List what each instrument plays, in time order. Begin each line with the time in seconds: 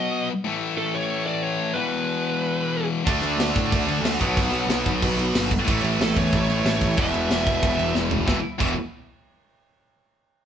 Already playing: distorted electric guitar B2 F#3 B3, lead electric guitar D#5
0.44 distorted electric guitar A2 E3 A3
0.78 lead electric guitar A4
0.95 lead electric guitar C#5
1.26 lead electric guitar D5
1.43 lead electric guitar C#5
1.74 distorted electric guitar E2 B2, lead electric guitar B4
1.78 distorted electric guitar E3
3.04 picked electric bass D2, distorted electric guitar D3 A3 D4, string section F#3 D4 A4 F#5, kick, crash
3.22 picked electric bass D2, crash
3.37 picked electric bass D2, snare, crash
3.56 picked electric bass A2, kick, crash
3.72 picked electric bass D2, kick, crash
3.87 picked electric bass D2, crash
4.02 picked electric bass D2, snare, crash
4.19 picked electric bass B1, distorted electric guitar B2 F#3 B3, string section D#4 B4, kick, crash
4.37 picked electric bass B1, kick, crash
4.51 picked electric bass B1, crash
4.68 picked electric bass B1, snare, crash
4.86 picked electric bass B1, kick, crash
5.02 picked electric bass B1, kick, crash
5.17 picked electric bass B1, crash
5.34 picked electric bass G1, snare, crash
5.51 kick, crash
5.65 picked electric bass A1, distorted electric guitar A2 E3, string section A3 E4 C#5 E5, kick, crash
5.69 distorted electric guitar A3
5.83 picked electric bass A1, crash
5.99 picked electric bass A1, lead electric guitar A4, snare, crash
6.16 picked electric bass E2, lead electric guitar C#5, kick, crash
6.33 picked electric bass A1, lead electric guitar C#5, kick, crash
6.49 picked electric bass A1, crash
6.64 picked electric bass A1, snare, crash
6.69 lead electric guitar C#5
6.81 picked electric bass A1, kick, crash
6.97 picked electric bass E1, distorted electric guitar E2 B2 E3, string section G3 B4, kick, crash
7.01 lead electric guitar E5
7.14 picked electric bass E1, crash
7.30 picked electric bass E1, snare, crash
7.46 picked electric bass E1, kick, crash
7.63 picked electric bass E1, kick, crash
7.78 picked electric bass E1, crash
7.95 picked electric bass E1, snare
8.11 floor tom
8.25 picked electric bass E1, distorted electric guitar E2 B2 E3, string section G3 E4 B4 E5, kick, snare
8.58 picked electric bass E1, distorted electric guitar E2 B2 E3, kick, crash